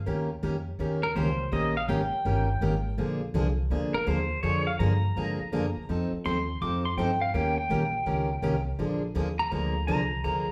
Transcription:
0.06 D#2 D#3 A#3 C#4 G4 A#4
0.43 F2 D#3 A#3 C#4 G4 A#4
0.79 D#2 D#3 A#3 C#4 G4 A#4
1.03 A#4
1.15 C#2 D#3 A#3 C#4 G4 A#4 C5
1.52 A#1 D#3 A#3 C#4 G4 A#4 D#5
1.77 F5
1.88 G#1 D#3 A#3 C#4 G4 A#4 G5
2.13 muted upright bass stroke
2.25 G1 D#3 A#3 C#4 G4 A#4
2.61 G#1 D#3 A#3 C#4 G4 A#4
2.98 A#1 D3 F3 A#3 D4 G#4
3.34 C2 D3 F3 A#3 D4 G#4
3.70 D2 D3 F3 A#3 D4 G#4
3.94 A#4, muted upright bass stroke
4.07 D#2 D3 F3 A#3 D4 G#4 C5
4.43 F2 D3 F3 A#3 D4 G#4 C#5
4.67 F5
4.79 G2 D3 F3 A#3 D4 G#4 A#5
5.16 G#2 D3 F3 A#3 D4 G#4
5.40 muted upright bass stroke
5.52 F#2 D3 F3 A#3 D4 G#4
5.76 muted upright bass stroke
5.89 F2 F3 C4 D#4 A4
6.13 muted upright bass stroke
6.25 D#2 F3 C4 D#4 A4 C6
6.62 F2 F3 C4 D#4 A4 D6
6.85 C6
6.97 G2 F3 C4 D#4 A4 G5
7.21 F5
7.34 D#2 D#3 A#3 C#4 G4 A#4 G5
7.58 G5
7.70 A#1 D#3 A#3 C#4 G4 A#4
8.06 C#2 D#3 A#3 C#4 G4 A#4
8.42 C2 D#3 A#3 C#4 G4 A#4
8.79 A#1 D3 F3 A#3 D4 G#4
9.15 D#2 D3 F3 A#3 D4 G#4
9.39 A#5
9.51 D2 D3 F3 A#3 D4 G#4 A#5
9.87 C2 D3 F3 A#3 D4 G#4 A#5
10.24 D2 D3 F3 A#3 D4 G#4 A#5
10.48 muted upright bass stroke

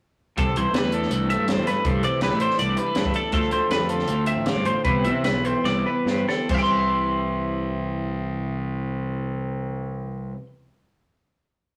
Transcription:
0.37 C2 C3 A4, kick, closed hi-hat
0.56 C2 E3 C5, closed hi-hat
0.73 E2 G3 B4, snare, closed hi-hat
0.83 E2 A3
0.92 D4 A4, closed hi-hat
1.03 snare
1.10 C2 E4, closed hi-hat
1.30 A3 E5, closed hi-hat
1.38 G2
1.47 G2 D4 C5, snare, closed hi-hat
1.57 E2
1.66 G2 E4 B4, snare, closed hi-hat
1.85 G2 C3 A4, kick, closed hi-hat
2.02 C3 E3 D5, closed hi-hat
2.21 C2 G3 B4, snare, closed hi-hat
2.30 A1 A3, snare
2.40 D4 C5, closed hi-hat
2.51 snare
2.58 C2 E4 D5, closed hi-hat
2.77 G3 B4, closed hi-hat
2.86 A3
2.95 G2 D4, snare, closed hi-hat
3.05 kick
3.14 E4 A4, closed hi-hat
3.32 D2 D3 A3 C4 F4 A4, kick, closed hi-hat
3.51 D2 A3 C5, closed hi-hat
3.70 F2 B4, snare, closed hi-hat
3.80 F2
3.89 F4 A4, closed hi-hat
3.99 snare
4.08 D2 F4, closed hi-hat
4.26 C4 E5, closed hi-hat
4.36 A1
4.46 A1 F4 D5, snare, closed hi-hat
4.56 G2
4.65 A1 F4 C5, closed hi-hat
4.85 C2 C3 E3 B3 C4 E4 B4, kick, closed hi-hat
5.05 C3 E3 E5, closed hi-hat
5.24 C2 B3 B4, snare, closed hi-hat
5.35 B1
5.45 C4 C5, closed hi-hat
5.64 C2 E4 D5, snare
5.86 B3 B4
6.05 G2 C4, snare
6.29 E4 A4, snare
6.49 C2 C3 E3 C5, kick, crash
6.55 C4 E4 E5 G5
6.63 C6

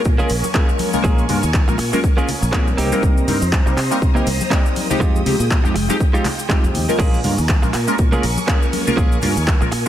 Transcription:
Already playing: A#4 G#5 C#6
0.05 A#2, kick, shaker
0.18 G#3 A#3 C#4 F4 G#4 A#4, low conga, shaker
0.29 A#1, open hi-hat, shaker
0.44 muted clean electric guitar stroke, high conga, shaker
0.54 G#3 A#3 C#4 F4 G#4 A#4, kick, clap, shaker
0.69 shaker
0.79 muted clean electric guitar stroke, open hi-hat, high conga, shaker
0.93 G#3 A#3 C#4 F4 A#4, low conga, shaker
1.04 A#1 A#3 C#4 F4 G#4, kick, shaker
1.18 shaker
1.29 G2 G#3 A#3 C#4 F4 A#4, open hi-hat, low conga, shaker
1.43 D#2, muted clean electric guitar stroke, shaker
1.54 kick, clap, shaker
1.68 A#1 G#3 A#3 C#4 F4 A#4, muted clean electric guitar stroke, shaker
1.78 A#2, muted clean electric guitar stroke, open hi-hat, shaker
1.92 G#3 A#3 C#4 F4 A#4, muted clean electric guitar stroke, high conga, shaker
2.04 kick, shaker
2.17 G#3 A#3 C#4 F4 G#4 A#4, shaker
2.28 open hi-hat, low conga, shaker
2.42 A#1, muted clean electric guitar stroke, shaker
2.52 G3 A#3 C4 C#4 D#4 F4 G#4 A#4, kick, clap, shaker
2.68 shaker
2.77 C2 A#3 C4 D#4 G4 C5 A#5 D#6, open hi-hat, low conga, shaker
2.92 G3 A#3 C4 D#4 A#4, high conga, shaker
3.02 C2, kick, shaker
3.17 shaker
3.28 G2 G3 A#3 C4 D#4 A#4, open hi-hat, low conga, shaker
3.41 F2, muted clean electric guitar stroke, shaker
3.52 kick, clap, shaker
3.66 C2 G3 A#3 C4 D#4 A#4, muted clean electric guitar stroke, shaker
3.77 C3, muted clean electric guitar stroke, clap, open hi-hat, shaker
3.91 G3 A#3 C4 D#4 A#4, muted clean electric guitar stroke, shaker
4.02 C3, kick, shaker
4.15 G3 A#3 C4 D#4 G4 A#4, low conga, shaker
4.27 C2, open hi-hat, shaker
4.40 muted clean electric guitar stroke, high conga, shaker
4.50 G3 A#3 C4 D#4 G4 A#4, kick, clap, shaker
4.65 shaker
4.76 muted clean electric guitar stroke, open hi-hat, high conga, shaker
4.90 F3 G#3 C4 D#4 G4, low conga, shaker
5.00 F2 G#3 D#4 F4 G4 G5, kick, shaker
5.16 shaker
5.26 C3 F3 G#3 C4 D#4 G4, open hi-hat, low conga, shaker
5.39 A#2, muted clean electric guitar stroke, shaker
5.51 kick, clap, shaker
5.64 F2 F3 G#3 C4 D#4 G4, muted clean electric guitar stroke, shaker
5.74 F1, muted clean electric guitar stroke, open hi-hat, shaker
5.89 F3 G#3 C4 D#4 G4, muted clean electric guitar stroke, high conga, shaker
6.00 kick, shaker
6.13 F3 G#3 C4 D#4 F4 G4, shaker
6.25 clap, open hi-hat, low conga, shaker
6.38 muted clean electric guitar stroke, shaker
6.49 F3 G#3 C4 D#4 F4 G4, kick, clap, shaker
6.64 F2, shaker
6.74 D#2, muted clean electric guitar stroke, open hi-hat, low conga, shaker
6.88 G#3 A#3 C#4 F4 A#4, high conga, shaker
6.99 A#1 A#3 C#4 F4 G#4 A#4 G#5 C#6, kick, crash, shaker
7.14 shaker
7.24 G2 G#3 A#3 C#4 F4 A#4, open hi-hat, low conga, shaker
7.37 D#2, muted clean electric guitar stroke, shaker
7.49 kick, clap, shaker
7.62 A#1 G#3 A#3 C#4 F4 A#4, muted clean electric guitar stroke, shaker
7.73 A#2, muted clean electric guitar stroke, clap, open hi-hat, shaker
7.87 G#3 A#3 C#4 F4 A#4, muted clean electric guitar stroke, shaker
7.98 A#2, kick, shaker
8.12 G#3 A#3 C#4 F4 G#4 A#4, low conga, shaker
8.23 A#1, open hi-hat, shaker
8.37 muted clean electric guitar stroke, high conga, shaker
8.47 G#3 A#3 C#4 F4 G#4 A#4, kick, clap, shaker
8.62 shaker
8.72 muted clean electric guitar stroke, open hi-hat, high conga, shaker
8.87 G#3 A#3 C#4 F4 A#4, low conga, shaker
8.97 A#1 A#3 C#4 F4 G#4, kick, shaker
9.12 shaker
9.22 G2 G#3 A#3 C#4 F4 A#4, open hi-hat, low conga, shaker
9.36 D#2, muted clean electric guitar stroke, shaker
9.48 kick, clap, shaker
9.61 A#1 G#3 A#3 C#4 F4 A#4, muted clean electric guitar stroke, shaker
9.72 A#2, muted clean electric guitar stroke, open hi-hat, shaker

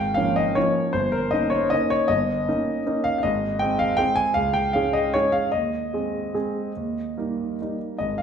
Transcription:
Already playing: G#1 G5
0.14 F3 A#3 C#4 F5
0.36 D#5
0.55 F3 A#3 C#4 C#5
0.93 G1 C5
1.12 A#4
1.31 A#3 C#4 D#4 D#5
1.50 C#5
1.70 A#3 C#4 D#4 D#5
1.90 C#5
2.08 G1 D#5
2.48 A#3 C#4 D#4
2.86 A#3 C#4 D#4
3.04 F5
3.18 F5
3.23 G#1 D#5
3.59 G#3 C4 G#4 G5
3.79 F5
3.97 G#3 C4 G#4 G5
4.16 G#5
4.34 C#2 F5
4.54 G5
4.73 G#3 C#4 G#4 F5
4.93 D#5
5.14 G#3 C#4 G#4 C#5
5.32 F5
5.52 D#2 D#5
5.93 G#3 C4 G#4
6.34 G#3 C4 G#4
6.76 D#2
7.17 G3 A#3 D#4
7.61 G3 A#3 D#4
7.99 G#1 D#5
8.18 F5

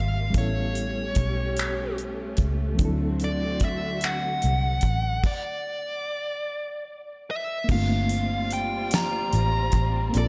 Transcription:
Already playing: G#1 C3 G3 A#3 C4 D4 F4 A#4 F5
0.30 G3 A3 B3 C#4 G4
0.34 A1 C#4 E4 C#5, kick, closed hi-hat
0.40 A4
0.75 closed hi-hat
1.15 B1, kick, closed hi-hat
1.57 finger snap, closed hi-hat
1.98 closed hi-hat
2.37 C#2, kick, closed hi-hat
2.75 D3 F3 C4 F#4, closed hi-hat
2.79 D2 F#3 D4 E4, kick
2.85 A4
3.20 closed hi-hat
3.24 D5
3.60 kick, closed hi-hat
3.65 E5
4.01 F#5, finger snap, closed hi-hat
4.42 C2, closed hi-hat
4.81 A1, kick, closed hi-hat
5.23 D5, kick, crash
7.31 E5
7.64 A#3 C4
7.69 G1 G3 C4 D4 F4 F5, kick, crash
7.75 A3
8.09 closed hi-hat
8.51 G5, closed hi-hat
8.91 snare, closed hi-hat
8.95 A#5
9.33 A1, closed hi-hat
9.72 A1, kick, closed hi-hat
10.09 A#3 C4
10.14 A#1 D4 F4 A4, closed hi-hat
10.18 A4 D5

